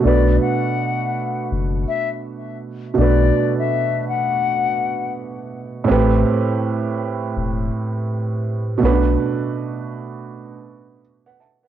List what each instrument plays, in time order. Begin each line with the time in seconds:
0.00 upright piano B2 A3 D4
0.05 sub bass B1, upright piano F#4 B4, flute D5
0.42 flute F#5
1.51 sub bass F#1
1.88 flute E5
2.94 upright piano B2 A3 D4
2.98 sub bass B1, upright piano F#4 B4, flute D5
3.59 flute E5
4.08 flute F#5
5.84 upright piano A2 A3 C4
5.90 sub bass A1, upright piano G4 B4
7.36 sub bass E1
8.78 upright piano B2 A3 C#4
8.83 sub bass B1, upright piano F#4 B4
8.88 upright piano D4
11.26 upright piano B4 F#5
11.40 upright piano E5 A5
11.63 upright piano B4 F#5